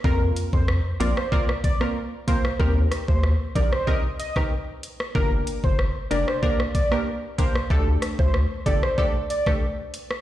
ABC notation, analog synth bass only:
X:1
M:4/4
L:1/16
Q:1/4=94
K:Gm
V:1 name="Analog synth bass" clef=bass
F,,2 z F,,2 z B,,, z8 z | E,,2 z E,,2 z B,,, z8 z | G,,,2 z G,,,2 z F,,, z8 z | D,,2 z D,,2 z G,,, z8 z |]